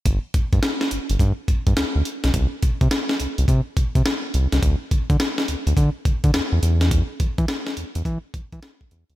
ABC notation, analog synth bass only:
X:1
M:4/4
L:1/16
Q:"Swing 16ths" 1/4=105
K:Ddor
V:1 name="Analog synth bass" clef=bass
G,,, z G,, G,, z2 G,,, G,,, G,, z G,, G,, D,, D,, z B,,, | C,, z C, C, z2 C,, C,, C, z C, C, z2 C,, C,, | D,, z D, D, z2 D,, D,, D, z D, D, E,, E,, E,,2- | E,,2 E, E, z2 E,, E,, E, z E, E, z2 E,, D,, |]